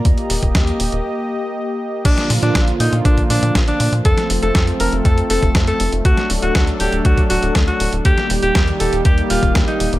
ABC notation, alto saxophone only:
X:1
M:4/4
L:1/16
Q:1/4=120
K:Bb
V:1 name="Alto saxophone"
z16 | D2 z D2 z E z D z D2 z D2 z | A2 z A2 z B z A z A2 z A2 z | ^F2 z F2 z G z F z F2 z F2 z |
G2 z G2 z A z G z F2 z E2 z |]